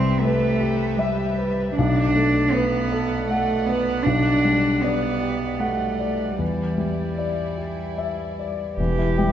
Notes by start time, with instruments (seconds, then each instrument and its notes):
Already playing: grand piano C2 G3, cello C4, string section G4 B4 E5
0.20 cello A3
0.24 grand piano B4
0.61 grand piano G4
0.96 cello G3, grand piano E5
1.38 grand piano B4
1.75 grand piano B1, string section A3 D5 F#5, cello D4
2.15 grand piano A3
2.51 cello B3, grand piano B4
2.92 grand piano A4
3.27 cello A3, grand piano F#5
3.66 cello B3, grand piano B4
4.03 grand piano B1, cello D4
4.07 string section G3
4.45 grand piano G3
4.81 cello B3, grand piano D5
5.22 grand piano G4
5.59 cello A3, grand piano F#5
5.99 grand piano D5
6.38 grand piano E2, cello G3, string section E4 D5
6.78 grand piano G3
7.18 grand piano D5
7.58 grand piano G4
7.98 grand piano E5
8.39 grand piano D5
8.77 sub bass E1, grand piano E2, string section G3 E4 B4, cello G4
8.98 grand piano E4
9.18 grand piano G3 G4